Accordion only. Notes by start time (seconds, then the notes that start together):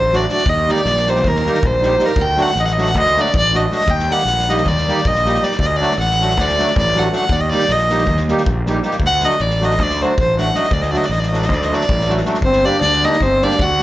0.12 F#3 A3 D4 F#4
0.29 F#3 A3 D4 F#4
0.67 G3 A#3 D#4 G4
1.06 G3 A#3 D#4 G4
1.44 G3 A#3 D#4 G4
1.80 G3 A#3 D#4 G4
1.98 G3 A#3 D#4 G4
2.36 F#3 A3 D4 F#4
2.77 F#3 A3 D4 F#4
3.16 F#3 A3 D4 F#4
3.52 F#3 A3 D4 F#4
3.69 F#3 A3 D4 F#4
4.09 G3 A#3 D#4 G4
4.48 G3 A#3 D#4 G4
4.87 G3 A#3 D#4 G4
5.25 G3 A#3 D#4 G4
5.39 G3 A#3 D#4 G4
5.79 F#3 A3 D4 F#4
6.20 F#3 A3 D4 F#4
6.57 F#3 A3 D4 F#4
6.95 F#3 A3 D4 F#4
7.11 F#3 A3 D4 F#4
7.51 G3 A#3 D#4 G4
7.89 G3 A#3 D#4 G4
8.28 G3 A#3 D#4 G4
8.67 G3 A#3 D#4 G4
8.82 G3 A#3 D#4 G4
9.22 F#3 A3 D4 F#4
9.60 F#3 A3 D4 F#4
10.00 F#3 A3 D4 F#4
10.36 F#3 A3 D4 F#4
10.53 F#3 A3 D4 F#4
10.92 F#3 A3 D4 F#4
11.30 F#3 A3 D4 F#4
11.70 F#3 A3 D4 F#4
12.06 F#3 A3 D4 F#4
12.25 F#3 A3 D4 F#4
12.64 G3 A#3 D4 G4
13.03 G3 A#3 D4 G4
13.41 G3 A#3 D4 G4
13.78 G3 A#3 D4 G4